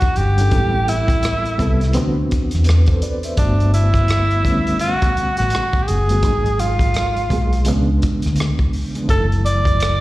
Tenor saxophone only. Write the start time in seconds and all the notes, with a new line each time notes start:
Already playing: F#4
0.17 G4
0.88 E4
3.38 D4
3.74 E4
4.80 F#4
5.38 F#4
5.83 G4
5.87 G#4
6.60 F4
9.10 A4
9.45 D5